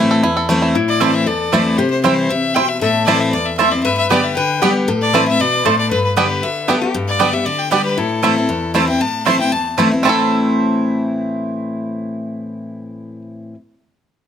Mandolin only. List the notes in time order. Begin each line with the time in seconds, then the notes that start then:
1.00 C4 E4 C5 A5
1.52 C4 E4 C5 A5
2.04 C4 E4 C5 G5
2.55 C4 E4 C5 G5
3.07 C4 E4 C5 A5
3.58 C4 E4 C5 A5
4.10 B3 G4 D5 G5
4.62 B3 G4 D5 G5
5.14 C4 E4 C5 A5
5.65 C4 E4 C5 A5
6.17 B3 G4 D5 G5
6.68 B3 G4 D5 G5
7.19 B3 G4 D5 G5
7.71 B3 G4 D5 G5
8.23 C4 E4 C5 A5
8.75 C4 E4 C5 A5
9.26 C4 E4 C5 A5
9.78 C4 E4 C5 A5
10.03 C4 E4 C5 A5